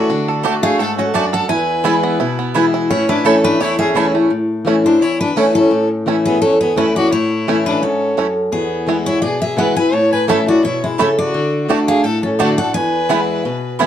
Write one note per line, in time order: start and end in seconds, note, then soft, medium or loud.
0.00 0.41 F#4 medium
0.00 0.41 D5 medium
0.10 0.43 D3 medium
0.10 0.60 D4 medium
0.28 0.76 A4 medium
0.43 0.62 D3 medium
0.43 0.54 A3 medium
0.43 0.63 A3 medium
0.43 0.63 D4 medium
0.43 0.54 F#4 medium
0.43 0.95 F#4 medium
0.43 0.61 F#4 medium
0.43 0.54 D5 loud
0.43 0.54 A5 loud
0.62 1.11 A3 medium
0.62 0.80 D4 medium
0.62 0.78 F#4 medium
0.62 0.81 G#4 medium
0.62 0.80 F5 loud
0.79 1.13 G#2 medium
0.79 0.97 A4 medium
0.79 1.30 A4 medium
0.79 0.98 F#5 medium
0.97 1.13 C#4 medium
0.97 1.47 F#4 medium
0.97 1.15 A4 medium
1.14 1.48 F#2 medium
1.14 1.24 A3 medium
1.14 1.49 D4 medium
1.14 1.32 F#4 medium
1.14 1.24 F#4 medium
1.14 1.24 D5 medium
1.14 1.33 D5 medium
1.14 1.25 A5 loud
1.33 1.50 A4 medium
1.33 1.48 A4 medium
1.33 1.49 F#5 medium
1.49 2.17 E2 medium
1.49 1.85 E4 medium
1.49 2.51 B4 medium
1.49 2.51 G#5 loud
1.84 2.18 E3 medium
1.84 2.18 G#3 medium
1.84 1.94 B3 medium
1.84 2.19 B3 medium
1.84 1.94 E4 medium
1.84 2.19 E4 medium
1.84 2.19 E4 loud
1.84 1.94 B4 medium
1.84 1.95 G#5 loud
2.03 2.38 B3 medium
2.20 2.87 B2 medium
2.20 2.55 E4 medium
2.39 2.87 B3 medium
2.54 2.89 E3 loud
2.54 2.89 G#3 medium
2.54 2.64 B3 medium
2.54 2.89 B3 medium
2.54 2.65 E4 medium
2.54 2.74 E4 medium
2.54 2.90 E4 loud
2.54 2.65 B4 loud
2.54 2.65 G#5 medium
2.74 3.09 E4 medium
2.90 3.57 A2 medium
2.90 3.41 C#4 medium
2.90 3.08 E4 medium
2.90 3.09 C#5 medium
3.09 3.27 D4 medium
3.09 3.57 E4 medium
3.09 3.25 B4 medium
3.24 3.58 E3 medium
3.24 3.35 A3 medium
3.24 3.59 A3 medium
3.24 3.42 C#4 medium
3.24 3.59 C#4 medium
3.24 3.35 E4 medium
3.24 3.59 E4 medium
3.24 3.44 A4 medium
3.24 3.76 A4 medium
3.24 3.35 C#5 loud
3.24 3.35 A5 medium
3.43 3.93 A3 medium
3.43 3.62 D4 medium
3.43 3.60 B4 loud
3.60 4.28 E2 medium
3.60 3.78 E4 medium
3.60 3.95 E4 medium
3.60 3.78 C#5 medium
3.79 4.28 C#4 medium
3.79 3.94 G#4 medium
3.79 3.89 E5 loud
3.95 4.13 E3 loud
3.95 4.05 A3 medium
3.95 4.14 A3 medium
3.95 4.14 C#4 loud
3.95 4.05 E4 medium
3.95 4.31 E4 medium
3.95 4.12 E4 loud
3.95 4.06 C#5 medium
3.95 4.06 A5 loud
4.13 4.31 A3 medium
4.13 4.31 C#4 soft
4.13 4.30 E4 medium
4.30 4.98 A2 medium
4.65 4.83 E3 medium
4.65 4.84 A3 medium
4.65 4.75 A3 medium
4.65 4.84 C#4 medium
4.65 4.75 C#4 medium
4.65 4.82 E4 medium
4.65 4.75 E4 medium
4.84 5.01 C#4 medium
4.84 5.03 D4 medium
4.84 5.00 E4 medium
4.84 5.02 C5 medium
5.01 5.68 E2 medium
5.01 5.20 E4 medium
5.01 5.20 C#5 medium
5.21 5.38 D4 medium
5.21 5.37 B4 medium
5.36 5.54 E3 loud
5.36 5.55 A3 loud
5.36 5.45 A3 medium
5.36 5.55 C#4 medium
5.36 5.55 C#4 loud
5.36 5.45 C#4 medium
5.36 5.53 E4 medium
5.36 5.45 E4 medium
5.36 5.54 A4 medium
5.54 5.88 C#4 medium
5.54 5.72 C#4 soft
5.54 5.70 E4 medium
5.54 5.88 A4 medium
5.71 6.38 A2 medium
6.06 6.40 E3 medium
6.06 6.40 A3 medium
6.06 6.15 A3 medium
6.06 6.41 C#4 medium
6.06 6.16 C#4 medium
6.06 6.41 E4 medium
6.06 6.16 E4 medium
6.25 6.41 B3 medium
6.25 6.41 G#4 medium
6.42 7.09 E2 medium
6.42 6.60 C#4 medium
6.42 6.60 A4 medium
6.61 6.76 B3 medium
6.61 6.76 G#4 medium
6.76 6.95 E3 medium
6.76 6.95 A3 medium
6.76 6.86 A3 medium
6.76 6.95 C#4 loud
6.76 6.86 C#4 medium
6.76 6.94 E4 loud
6.76 6.86 E4 medium
6.76 6.95 E4 medium
6.76 6.95 B4 medium
6.96 7.12 C#4 soft
6.96 7.11 E4 medium
6.96 7.11 F#4 medium
6.96 7.12 D5 loud
7.12 7.79 A2 medium
7.12 7.62 E4 medium
7.12 7.62 C#5 medium
7.47 7.81 E3 medium
7.47 7.81 A3 medium
7.47 7.56 A3 medium
7.47 7.81 C#4 medium
7.47 7.56 C#4 medium
7.47 7.56 E4 medium
7.47 7.82 E4 loud
7.66 7.81 D4 medium
7.66 7.82 B4 medium
7.82 8.16 G#2 medium
7.82 8.32 C#4 medium
7.82 8.33 A4 medium
8.17 8.51 F#2 medium
8.17 8.26 A3 medium
8.17 8.26 C#4 medium
8.17 8.26 E4 medium
8.52 9.19 E2 medium
8.52 9.03 B3 medium
8.52 9.03 G#4 medium
8.87 9.21 E3 medium
8.87 9.21 G#3 medium
8.87 9.21 B3 medium
8.87 8.96 B3 medium
8.87 9.22 E4 medium
8.87 8.91 E4 medium
9.06 9.21 E4 medium
9.06 9.21 C#5 medium
9.22 9.90 B2 medium
9.22 9.40 G#4 medium
9.22 9.41 D5 medium
9.41 9.57 G#4 medium
9.41 9.58 E5 medium
9.57 9.75 E3 medium
9.57 9.76 G#3 medium
9.57 9.76 B3 loud
9.57 9.67 B3 medium
9.57 9.75 E4 loud
9.57 9.61 E4 medium
9.57 9.76 B4 medium
9.57 9.76 F#5 medium
9.76 9.93 B3 medium
9.76 9.92 E4 medium
9.76 9.95 B4 medium
9.76 9.94 G#5 medium
9.93 10.60 A2 medium
9.93 10.14 C#5 medium
9.93 10.12 A5 loud
10.12 10.29 B4 medium
10.12 10.28 G#5 loud
10.27 10.46 E3 medium
10.27 10.46 A3 medium
10.27 10.38 A3 medium
10.27 10.37 A3 medium
10.27 10.47 C#4 medium
10.27 10.37 C#4 medium
10.27 10.38 E4 medium
10.27 10.45 E4 medium
10.27 10.38 E4 medium
10.27 10.46 A4 medium
10.27 10.38 C#5 medium
10.27 10.47 E5 medium
10.27 10.38 A5 medium
10.46 10.63 C#4 medium
10.46 10.62 E4 medium
10.46 10.63 F#4 medium
10.46 10.64 D5 medium
10.63 10.97 B2 medium
10.63 10.82 E4 medium
10.63 10.82 C#5 medium
10.83 10.98 G#3 medium
10.83 10.99 E4 medium
10.98 11.32 C#3 medium
10.98 11.08 A3 medium
10.98 11.07 A3 medium
10.98 11.07 C#4 medium
10.98 11.17 C#4 medium
10.98 11.08 E4 medium
10.98 11.18 A4 medium
10.98 11.09 C#5 medium
10.98 11.09 A5 loud
11.19 11.66 F#4 medium
11.19 11.66 D5 medium
11.34 11.67 D3 medium
11.68 12.02 D3 medium
11.68 11.79 A3 medium
11.68 12.03 A3 medium
11.68 11.78 A3 medium
11.68 12.03 D4 medium
11.68 11.78 D4 medium
11.68 11.79 F#4 loud
11.68 12.03 F#4 medium
11.68 11.78 F#4 medium
11.68 11.79 D5 loud
11.68 11.79 A5 medium
11.88 12.06 G#4 medium
11.88 12.04 F5 loud
12.04 12.71 A2 medium
12.04 12.23 A4 medium
12.04 12.22 F#5 medium
12.23 12.39 C#4 medium
12.23 12.39 A4 medium
12.39 12.58 D3 medium
12.39 12.49 A3 medium
12.39 12.48 A3 medium
12.39 12.58 A3 medium
12.39 12.48 D4 medium
12.39 12.58 D4 loud
12.39 12.49 F#4 loud
12.39 12.48 F#4 medium
12.39 12.57 F#4 medium
12.39 12.57 F#4 loud
12.39 12.49 D5 medium
12.39 12.58 D5 medium
12.39 12.49 A5 loud
12.58 12.75 D4 medium
12.58 12.74 F#4 medium
12.58 12.74 A4 medium
12.58 12.74 F#5 medium
12.74 13.42 E2 medium
12.74 13.76 B4 medium
12.74 13.76 G#5 loud
13.09 13.43 E3 medium
13.09 13.43 G#3 medium
13.09 13.19 B3 medium
13.09 13.18 B3 medium
13.09 13.44 B3 medium
13.09 13.19 E4 loud
13.09 13.12 E4 medium
13.09 13.44 E4 loud
13.09 13.20 B4 loud
13.09 13.20 G#5 medium
13.45 13.87 B2 medium
13.79 13.87 E3 medium
13.79 13.87 G#3 medium
13.79 13.87 B3 loud
13.79 13.87 B3 medium
13.79 13.87 B3 loud
13.79 13.87 E4 loud
13.79 13.83 E4 medium
13.79 13.87 E4 loud
13.79 13.87 B4 loud
13.79 13.87 G#5 loud